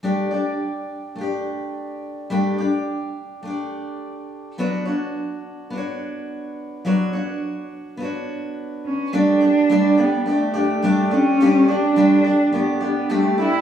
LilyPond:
<<
  \new Staff \with { instrumentName = "Steel-string acoustic guitar" } { \time 4/4 \key g \lydian \tempo 4 = 106 <g a d' g' d''>8 <d' g' d''>4. <a d' g' d''>2 | <g a d' g' d''>8 <d' g' d''>4. <a d' g' d''>2 | <fis b d' fis' cis''>8 <d' fis' cis''>4. <b d' fis' cis''>2 | <fis b d' fis' cis''>8 <d' fis' cis''>4. <b d' fis' cis''>2 |
<g a d' g' d''>8 <d' g' d''>8 <g a d' g' d''>8 <d' g' d''>8 <a d' g' d''>8 <d' g' d''>8 <g a d' g' d''>8 <d' g' d''>8 | <g a d' g' d''>8 <d' g' d''>8 <g a d' g' d''>8 <d' g' d''>8 <a d' g' d''>8 <d' g' d''>8 <g a d' g' d''>8 <d' g' d''>8 | }
  \new Staff \with { instrumentName = "Cello" } { \time 4/4 \key g \lydian r1 | r1 | r1 | r2. r8 cis'8 |
d'4. b8 a4. cis'8~ | cis'8 d'4. b4 a8 e'8 | }
>>